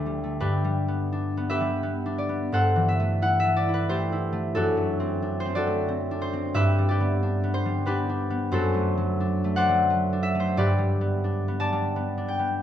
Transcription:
0.00 0.43 D2 medium
0.00 0.22 A3 soft
0.00 0.40 D4 soft
0.00 2.13 D5 medium
0.06 0.35 G3 soft
0.24 0.43 A3 soft
0.40 2.51 G2 medium
0.40 1.11 D4 medium
0.40 1.49 G4 medium
0.40 1.49 B4 medium
0.64 1.59 G3 medium
0.88 1.36 B3 medium
1.12 2.05 D4 medium
1.37 1.82 B3 medium
1.50 3.89 G4 medium
1.50 2.56 B4 medium
1.50 2.67 E5 medium
1.61 4.58 G3 medium
1.83 2.28 B3 medium
2.06 2.55 D4 medium
2.18 2.55 D5 medium
2.29 2.55 B3 medium
2.52 4.57 G2 medium
2.52 3.89 A4 medium
2.52 3.88 C5 medium
2.52 3.11 F#5 medium
2.76 4.57 E3 medium
2.88 3.38 E5 medium
3.00 3.43 A3 medium
3.22 3.67 E4 medium
3.22 3.50 F#5 medium
3.40 3.67 E5 medium
3.44 3.88 A3 medium
3.56 3.84 D5 medium
3.69 4.11 E4 medium
3.74 4.01 B4 medium
3.89 4.31 A3 medium
3.89 4.58 G4 medium
3.89 4.54 A4 medium
3.89 5.39 C5 medium
4.12 4.58 E4 medium
4.32 4.76 A3 medium
4.55 6.58 F#2 medium
4.55 5.21 D4 medium
4.55 5.55 F#4 medium
4.55 5.55 A4 medium
4.77 5.66 A3 medium
5.00 5.44 C4 medium
5.22 6.10 D4 medium
5.40 5.67 C5 loud
5.45 5.87 C4 medium
5.55 6.59 F#4 medium
5.55 6.59 A4 medium
5.55 6.87 D5 medium
5.67 6.59 A3 medium
5.88 6.32 C4 medium
6.11 7.21 D4 medium
6.22 6.58 C5 medium
6.33 6.58 C4 medium
6.54 8.54 G2 medium
6.54 6.90 G4 medium
6.54 6.89 B4 medium
6.54 7.11 E5 medium
6.78 7.64 G3 medium
6.89 7.86 G4 medium
6.89 7.85 B4 medium
6.89 9.56 D5 medium
7.00 7.42 B3 medium
7.23 7.86 D4 medium
7.44 7.85 B3 medium
7.54 8.09 C5 medium
7.66 8.55 G3 medium
7.86 8.29 B3 medium
7.86 8.08 D4 medium
7.86 8.55 G4 medium
7.86 8.55 B4 medium
8.09 9.19 D4 medium
8.30 8.55 B3 medium
8.52 10.57 F#2 medium
8.52 10.58 F#4 medium
8.52 10.58 A4 medium
8.52 9.56 C5 loud
8.74 9.43 A3 medium
8.97 9.68 F#3 medium
9.20 10.12 D4 medium
9.44 9.89 A3 medium
9.56 10.39 C5 medium
9.56 10.56 D5 medium
9.56 10.58 F#5 loud
9.69 10.58 F#3 medium
9.90 10.33 A3 medium
10.13 11.23 D4 medium
10.23 10.50 E5 loud
10.35 10.58 A3 medium
10.40 10.67 C5 medium
10.57 12.62 G2 medium
10.57 12.62 G4 medium
10.57 12.62 B4 medium
10.57 11.59 D5 medium
10.78 11.71 G3 medium
11.01 11.47 B3 medium
11.24 12.16 D4 medium
11.48 11.95 B3 medium
11.60 12.62 D5 medium
11.60 12.62 A5 loud
11.73 12.62 G3 medium
11.96 12.38 B3 medium
12.18 12.62 D4 medium
12.28 12.62 G5 medium
12.39 12.62 B3 medium

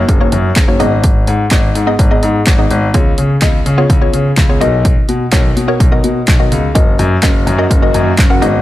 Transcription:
0.00 0.14 A#3 medium
0.00 0.14 D#4 medium
0.00 0.15 F#4 medium
0.00 0.15 C#5 medium
0.00 impact medium
0.09 0.24 F#1 loud
0.09 kick loud
0.09 closed hi-hat medium
0.20 0.56 A#3 medium
0.20 0.56 D#4 medium
0.20 0.56 F#4 medium
0.20 0.56 C#5 loud
0.32 0.48 F#2 medium
0.32 closed hi-hat medium
0.56 0.80 F#1 medium
0.56 kick loud
0.56 snare medium
0.56 clap loud
0.56 closed hi-hat medium
0.68 0.80 A#3 medium
0.68 0.78 D#4 medium
0.68 0.80 F#4 medium
0.68 0.80 C#5 medium
0.80 1.28 G#1 medium
0.80 1.37 B3 medium
0.80 1.37 D#4 medium
0.80 1.37 G#4 medium
0.80 1.37 D#5 loud
0.80 closed hi-hat medium
1.04 kick loud
1.04 closed hi-hat medium
1.27 1.43 G#2 loud
1.27 closed hi-hat medium
1.51 1.67 G#1 loud
1.51 1.78 B3 medium
1.51 1.78 D#4 medium
1.51 1.78 G#4 medium
1.51 1.78 D#5 medium
1.51 kick loud
1.51 snare medium
1.51 clap loud
1.51 closed hi-hat medium
1.75 1.91 G#2 medium
1.75 closed hi-hat medium
1.87 2.05 B3 medium
1.87 2.05 D#4 medium
1.87 2.05 G#4 medium
1.87 2.05 D#5 loud
1.99 2.15 G#1 loud
1.99 kick loud
1.99 closed hi-hat medium
2.11 2.46 B3 medium
2.11 2.46 D#4 medium
2.11 2.46 G#4 medium
2.11 2.47 D#5 loud
2.23 2.38 G#2 loud
2.23 closed hi-hat medium
2.47 2.62 G#1 medium
2.47 kick loud
2.47 snare medium
2.47 clap loud
2.47 closed hi-hat medium
2.58 2.85 B3 medium
2.58 2.85 D#4 medium
2.58 2.85 G#4 medium
2.58 2.85 D#5 medium
2.71 2.86 G#1 loud
2.71 closed hi-hat soft
2.94 3.10 C#2 loud
2.94 3.30 B3 medium
2.94 3.30 F4 medium
2.94 3.30 G#4 medium
2.94 3.30 C#5 medium
2.94 kick loud
2.94 closed hi-hat medium
3.18 3.34 C#3 loud
3.18 closed hi-hat medium
3.42 3.58 C#2 loud
3.42 3.68 B3 medium
3.42 3.69 F4 medium
3.42 3.69 G#4 medium
3.42 3.69 D#5 medium
3.42 kick loud
3.42 snare medium
3.42 clap loud
3.42 closed hi-hat medium
3.66 3.81 C#3 loud
3.66 closed hi-hat medium
3.78 3.95 B3 medium
3.78 3.95 F4 medium
3.78 3.96 G#4 medium
3.78 3.96 C#5 loud
3.90 4.05 C#2 loud
3.90 kick loud
3.90 closed hi-hat medium
4.01 4.37 B3 medium
4.01 4.37 F4 medium
4.01 4.37 G#4 medium
4.01 4.37 C#5 loud
4.13 4.29 C#3 medium
4.13 closed hi-hat medium
4.37 4.61 C#2 medium
4.37 kick loud
4.37 snare medium
4.37 clap loud
4.37 closed hi-hat medium
4.49 4.59 B3 medium
4.49 4.61 F4 medium
4.49 4.61 G#4 medium
4.49 4.61 C#5 loud
4.61 4.92 B1 loud
4.61 5.18 B3 medium
4.61 5.18 F#4 medium
4.61 5.18 A#4 medium
4.61 5.18 D#5 loud
4.61 closed hi-hat medium
4.85 kick loud
4.85 closed hi-hat medium
5.09 5.24 B2 loud
5.09 closed hi-hat medium
5.32 5.48 B1 loud
5.32 5.59 B3 medium
5.32 5.59 F#4 medium
5.32 5.59 A#4 medium
5.32 5.59 C#5 medium
5.32 kick loud
5.32 snare medium
5.32 clap loud
5.32 closed hi-hat medium
5.57 5.72 B2 loud
5.57 closed hi-hat medium
5.68 5.86 B3 medium
5.68 5.86 F#4 medium
5.68 5.86 A#4 medium
5.68 5.86 C#5 medium
5.80 5.96 B1 medium
5.80 kick loud
5.80 closed hi-hat medium
5.92 6.27 B3 medium
5.92 6.27 F#4 medium
5.92 6.27 A#4 medium
5.92 6.27 D#5 medium
6.04 6.20 B2 loud
6.04 closed hi-hat medium
6.28 6.43 B1 loud
6.28 kick loud
6.28 snare medium
6.28 clap loud
6.28 closed hi-hat medium
6.39 6.66 B3 medium
6.39 6.66 F#4 medium
6.39 6.66 A#4 medium
6.39 6.66 D#5 loud
6.52 6.67 C#2 medium
6.52 closed hi-hat medium
6.75 6.91 F#1 loud
6.75 8.62 D#3 medium
6.75 8.40 A#3 medium
6.75 7.11 C#4 medium
6.75 7.11 F#4 medium
6.75 8.40 F#4 medium
6.75 7.11 A#4 medium
6.75 7.11 D#5 medium
6.75 kick loud
6.75 closed hi-hat medium
6.99 7.15 F#2 loud
6.99 closed hi-hat medium
7.23 7.47 F#1 loud
7.23 7.49 C#4 medium
7.23 7.49 F#4 medium
7.23 7.49 A#4 medium
7.23 7.50 D#5 medium
7.23 kick loud
7.23 snare medium
7.23 clap loud
7.23 closed hi-hat medium
7.47 7.62 F#2 loud
7.47 closed hi-hat medium
7.58 7.76 C#4 medium
7.58 7.76 F#4 medium
7.58 7.76 A#4 medium
7.58 7.77 D#5 loud
7.71 7.86 F#1 loud
7.71 kick loud
7.71 closed hi-hat medium
7.82 8.18 C#4 medium
7.82 8.18 F#4 medium
7.82 8.18 A#4 medium
7.82 8.18 D#5 loud
7.94 8.10 F#2 medium
7.94 closed hi-hat medium
8.18 8.42 F#1 medium
8.18 kick loud
8.18 snare medium
8.18 clap loud
8.18 closed hi-hat medium
8.30 8.42 C#4 medium
8.30 8.42 F#4 medium
8.30 8.42 A#4 medium
8.30 8.42 F#5 medium
8.42 8.62 G#1 loud
8.42 8.62 B3 medium
8.42 8.62 D#4 medium
8.42 8.62 G#4 medium
8.42 8.62 D#5 loud
8.42 closed hi-hat medium

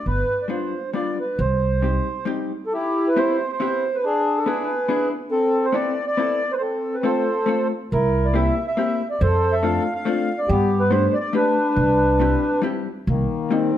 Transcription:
0.06 0.21 G1 medium
0.06 0.45 B4 medium
0.42 0.49 D5 medium
0.48 0.72 G3 soft
0.48 0.73 B3 soft
0.48 0.73 D4 soft
0.48 0.73 F4 soft
0.48 0.90 C5 medium
0.93 1.17 G3 medium
0.93 1.18 B3 soft
0.93 1.18 D4 soft
0.93 1.18 F4 soft
0.93 1.18 D5 medium
1.20 1.40 B4 medium
1.39 1.97 C2 medium
1.39 2.25 C5 medium
1.82 2.07 G3 soft
1.82 2.07 C4 soft
1.82 2.07 D#4 soft
1.82 2.07 G4 soft
2.25 2.51 G3 medium
2.25 2.51 C4 medium
2.25 2.52 D#4 medium
2.25 2.52 G4 medium
2.66 2.73 A4 medium
2.73 3.37 E4 medium
2.73 3.08 G4 medium
3.08 3.18 B4 medium
3.16 3.40 B3 soft
3.16 3.41 C4 medium
3.16 3.41 E4 soft
3.16 3.41 G4 medium
3.16 3.51 C5 medium
3.53 3.96 C5 medium
3.60 3.84 B3 medium
3.60 3.84 C4 medium
3.60 3.84 E4 soft
3.60 3.85 G4 medium
3.95 4.05 B4 medium
4.04 4.66 D4 medium
4.04 4.39 G#4 loud
4.38 4.48 A4 medium
4.46 4.70 B3 medium
4.46 4.70 D4 soft
4.46 4.70 E4 soft
4.46 5.08 G#4 medium
4.46 4.70 G#4 medium
4.46 5.09 B4 medium
4.88 5.12 B3 medium
4.88 5.12 D4 medium
4.88 5.12 E4 medium
4.88 5.12 G#4 medium
5.31 5.94 C4 medium
5.31 5.66 A4 loud
5.65 5.75 C5 medium
5.72 5.97 B3 soft
5.72 5.97 C4 soft
5.72 5.98 E4 soft
5.72 5.98 A4 soft
5.72 6.05 D5 medium
6.07 6.52 D5 medium
6.17 6.41 B3 medium
6.17 6.41 C4 medium
6.17 6.42 E4 medium
6.17 6.42 A4 medium
6.52 6.56 B4 medium
6.52 6.54 C5 medium
6.58 6.96 A4 loud
6.58 6.62 C5 medium
6.62 7.24 C4 medium
6.95 7.05 B4 medium
7.03 7.27 A3 soft
7.03 7.28 C4 medium
7.03 7.28 F4 medium
7.03 7.67 A4 medium
7.03 7.28 A4 medium
7.03 7.68 C5 medium
7.46 7.70 A3 medium
7.46 7.71 C4 medium
7.46 7.71 F4 soft
7.46 7.72 A4 medium
7.92 8.48 C2 medium
7.92 8.55 E4 medium
7.92 8.26 A#4 medium
8.25 8.35 D5 medium
8.34 8.57 A#3 soft
8.34 8.58 C4 soft
8.34 8.58 E4 soft
8.34 8.58 G4 medium
8.34 8.66 E5 medium
8.67 9.08 E5 medium
8.77 9.01 A#3 medium
8.77 9.01 C4 medium
8.77 9.01 E4 soft
8.77 9.01 G4 medium
9.10 9.21 D5 medium
9.21 9.77 F2 medium
9.21 9.84 A4 medium
9.21 9.55 C5 medium
9.53 9.63 E5 loud
9.63 9.86 A3 soft
9.63 9.86 C4 soft
9.63 9.87 D4 medium
9.63 9.87 F4 soft
9.63 9.94 F5 loud
9.95 10.40 F5 medium
10.05 10.29 A3 medium
10.05 10.29 C4 medium
10.05 10.30 D4 medium
10.05 10.30 F4 medium
10.39 10.49 D5 medium
10.48 11.05 G2 medium
10.48 11.11 B3 medium
10.48 10.82 G4 loud
10.80 10.91 B4 medium
10.90 11.14 A3 medium
10.90 11.14 B3 soft
10.90 11.15 D4 medium
10.90 11.15 G4 soft
10.90 11.14 C5 medium
11.14 11.18 D5 medium
11.20 11.34 D5 medium
11.33 11.56 A3 medium
11.33 11.57 B3 medium
11.33 11.57 D4 soft
11.33 12.61 D4 medium
11.33 11.57 G4 medium
11.33 12.60 B4 medium
11.76 12.33 C2 medium
12.20 12.43 G3 medium
12.20 12.43 C4 medium
12.20 12.44 E4 medium
12.20 12.44 G4 medium
12.62 12.87 G3 medium
12.62 12.87 C4 medium
12.62 12.88 E4 medium
12.62 12.88 G4 medium
13.07 13.23 C2 medium
13.07 13.72 D#3 medium
13.07 13.54 A#3 medium
13.50 13.75 G3 soft
13.50 13.75 A#3 soft
13.50 13.75 C4 medium
13.50 13.78 C4 medium
13.50 13.75 D#4 medium

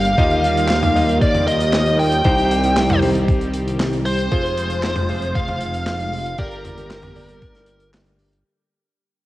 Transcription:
0.00 0.16 G1 medium
0.00 0.16 D3 medium
0.00 2.21 G3 medium
0.00 2.21 A#3 medium
0.00 0.15 G4 medium
0.00 0.16 G4 medium
0.00 0.15 A#4 medium
0.00 0.15 D5 medium
0.00 1.17 F5 loud
0.05 closed hi-hat medium
0.18 2.22 D#2 medium
0.18 4.28 D#3 medium
0.18 0.93 A#3 medium
0.18 0.93 D#4 medium
0.18 2.23 F4 medium
0.18 0.93 F4 medium
0.18 0.93 G4 medium
0.18 0.93 D#5 loud
0.18 kick loud
0.18 closed hi-hat medium
0.30 closed hi-hat soft
0.44 closed hi-hat medium
0.57 closed hi-hat medium
0.69 snare loud
0.69 clap medium
0.69 closed hi-hat medium
0.83 closed hi-hat soft
0.83 mid tom medium
0.96 2.22 A#3 medium
0.96 2.22 D#4 medium
0.96 2.22 F4 medium
0.96 2.22 G4 medium
0.96 2.22 D#5 medium
0.96 open hi-hat loud
1.09 closed hi-hat medium
1.21 1.48 D5 medium
1.21 1.47 D5 medium
1.21 kick loud
1.21 closed hi-hat medium
1.34 closed hi-hat soft
1.34 mid tom medium
1.47 1.95 D#5 loud
1.47 1.96 D#5 loud
1.47 closed hi-hat medium
1.60 closed hi-hat medium
1.73 snare loud
1.73 clap medium
1.73 closed hi-hat medium
1.86 closed hi-hat soft
1.99 2.99 G5 loud
1.99 open hi-hat medium
2.12 closed hi-hat medium
2.24 4.29 C2 medium
2.24 4.30 G3 medium
2.24 4.30 C4 medium
2.24 2.99 D#4 medium
2.24 4.30 G4 medium
2.24 2.99 G4 medium
2.24 2.99 C5 loud
2.24 kick loud
2.24 closed hi-hat medium
2.38 closed hi-hat soft
2.51 closed hi-hat loud
2.63 closed hi-hat medium
2.77 snare loud
2.77 clap loud
2.77 closed hi-hat medium
2.89 closed hi-hat soft
2.89 mid tom loud
3.02 4.29 D#4 medium
3.02 4.29 G4 medium
3.02 4.29 C5 medium
3.02 open hi-hat medium
3.15 closed hi-hat medium
3.28 kick loud
3.28 closed hi-hat medium
3.41 closed hi-hat soft
3.53 closed hi-hat medium
3.68 closed hi-hat medium
3.80 snare loud
3.80 clap loud
3.80 closed hi-hat medium
3.93 closed hi-hat soft
4.05 5.39 C5 loud
4.05 open hi-hat medium
4.19 closed hi-hat medium
4.31 6.36 F1 medium
4.31 6.37 C3 medium
4.31 6.37 F3 medium
4.31 6.37 G#3 medium
4.31 5.06 F4 medium
4.31 6.37 F4 medium
4.31 5.06 G#4 medium
4.31 5.06 C5 loud
4.31 kick loud
4.31 closed hi-hat medium
4.45 closed hi-hat soft
4.58 closed hi-hat loud
4.70 closed hi-hat medium
4.83 snare loud
4.83 clap medium
4.83 closed hi-hat medium
4.96 closed hi-hat soft
4.96 mid tom loud
5.09 6.36 F4 medium
5.09 6.36 G#4 medium
5.09 6.36 C5 medium
5.09 open hi-hat medium
5.22 closed hi-hat medium
5.35 6.42 F5 loud
5.35 kick loud
5.35 closed hi-hat medium
5.48 closed hi-hat soft
5.48 mid tom medium
5.61 closed hi-hat loud
5.74 closed hi-hat medium
5.87 snare loud
5.87 clap medium
5.87 closed hi-hat medium
6.00 closed hi-hat soft
6.14 open hi-hat medium
6.26 closed hi-hat medium
6.38 8.43 G1 medium
6.38 8.43 D3 medium
6.38 8.43 G3 medium
6.38 8.43 A#3 medium
6.38 8.43 G4 medium
6.38 7.13 G4 loud
6.38 7.13 A#4 medium
6.38 7.90 A#4 loud
6.38 7.90 A#4 medium
6.38 7.13 D5 loud
6.38 kick loud
6.38 closed hi-hat medium
6.51 closed hi-hat soft
6.65 closed hi-hat loud
6.65 mid tom medium
6.78 closed hi-hat medium
6.91 snare loud
6.91 clap medium
6.91 closed hi-hat medium
7.02 closed hi-hat soft
7.02 mid tom medium
7.16 8.43 G4 medium
7.16 8.43 A#4 medium
7.16 8.43 D5 medium
7.16 open hi-hat medium
7.29 closed hi-hat medium
7.42 kick loud
7.42 closed hi-hat medium
7.55 snare soft
7.55 closed hi-hat medium
7.66 closed hi-hat medium
7.80 closed hi-hat medium
7.94 snare loud
7.94 clap loud
7.94 closed hi-hat medium
8.07 closed hi-hat soft
8.19 open hi-hat medium
8.33 closed hi-hat medium

